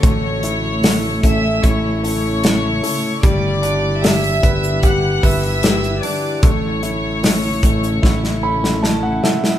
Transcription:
<<
  \new Staff \with { instrumentName = "Violin section" } { \time 4/4 \key a \mixolydian \tempo 4 = 75 <cis'' cis'''>4. <e'' e'''>8 <cis'' cis'''>8 <cis'' cis'''>4. | <d'' d'''>4 <e'' e'''>4 <fis'' fis'''>8 <e'' e'''>16 <e'' e'''>8. <d'' d'''>8 | <cis'' cis'''>2.~ <cis'' cis'''>8 r8 | }
  \new Staff \with { instrumentName = "Grand piano" } { \time 4/4 \key a \mixolydian << { r1 | r1 | r2 r8 b''8 a''16 fis''16 e''8 | } \\ { a8 e'8 a'8 a8 e'8 a8 e'8 a'8 | g8 d'8 g'8 b'8 g'8 b'8 g'8 d'8 | a8 e'8 a'8 a8 e'8 a8 e'8 a'8 | } >> }
  \new Staff \with { instrumentName = "Steel-string acoustic guitar" } { \time 4/4 \key a \mixolydian a,8 a8 e'8 cis'8 e'8 cis'8 e'8 a8 | g,8 g8 e'8 b8 e'8 b8 e'8 g8 | a,8 a8 e'8 cis'8 e'8 cis'8 e'8 a8 | }
  \new Staff \with { instrumentName = "Ambient pad" } { \clef bass \time 4/4 \key a \mixolydian << { e'1~ | e'1~ | e'1 | } \\ { <cis a>1 | <d g>1 | <cis a>1 | } >> }
  \new Staff \with { instrumentName = "Fingered electric bass" } { \clef bass \time 4/4 \key a \mixolydian a,,4. a,,8 a,,4. r8 | g,,4. g,,4 g,,4 r8 | a,,4. a,,8 a,,4. r8 | }
  \new DrumStaff \with { instrumentName = "Drums" } \drummode { \time 4/4 <hho hhp bd>8 <hho hhp>8 <hho hhp sn>8 <hho hhp bd>8 <hho hhp bd>8 <hho hhp>8 <hho hhp sn>8 <hho hhp>8 | <hho hhp bd>8 <hho hhp>8 <hho hhp sn>16 hho16 <hho hhp bd>16 hhp16 <hho hhp bd>8 <hho hhp bd>16 hho16 <hho hhp sn>16 hhp16 <hho hhp>8 | <hho hhp bd>8 <hho hhp>8 <hho hhp sn>16 hho16 <hho hhp bd>16 hhp16 <bd sn>16 sn8 sn16 sn8 sn16 sn16 | }
>>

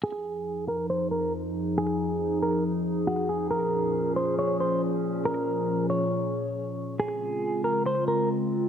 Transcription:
<<
  \new Staff \with { instrumentName = "Clean electric guitar" } { \time 4/4 \key f \phrygian \tempo 4 = 138 aes'4. bes'8 c''8 bes'8 r4 | aes'4. bes'8 r4 ges'8 aes'8 | bes'4. c''8 des''8 c''8 r4 | bes'4. des''2~ des''8 |
aes'4. bes'8 c''8 bes'8 r4 | }
  \new Staff \with { instrumentName = "Ambient pad" } { \clef bass \time 4/4 \key f \phrygian << { aes'1~ | aes'1~ | aes'1~ | aes'1 |
f'1 | } \\ { <f, f ees'>1~ | <f, f ees'>1 | <bes, f des'>1~ | <bes, f des'>1 |
<des aes c'>1 | } >> }
>>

